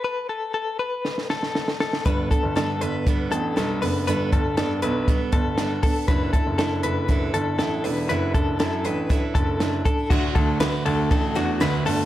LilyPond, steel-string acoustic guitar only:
\new Staff \with { instrumentName = "Steel-string acoustic guitar" } { \time 4/4 \key d \major \tempo 4 = 119 r1 | <g b d' a'>8 <b d' a'>8 <g b d' a'>8 <b d' a'>8 <g b d' a'>8 <b d' a'>8 <g b d' a'>8 <b d' a'>8 | <g b d' a'>8 <b d' a'>8 <g b d' a'>8 <b d' a'>8 <g b d' a'>8 <b d' a'>8 <g b d' a'>8 <b d' a'>8 | <fis d' e' a'>8 <d' e' a'>8 <fis d' e' a'>8 <d' e' a'>8 <fis d' e' a'>8 <d' e' a'>8 <fis d' e' a'>8 <d' e' a'>8 |
<fis d' e' a'>8 <d' a'>8 <fis d' e' a'>8 <d' e' a'>8 <fis d' e' a'>8 <d' e'>8 <fis d' e' a'>8 <d' e' a'>8 | <d a d' fis'>8 <a d' fis'>8 <d a d' fis'>8 <a d' fis'>8 <d a d' fis'>8 <a d' fis'>8 <d a d' fis'>8 <a d' fis'>8 | }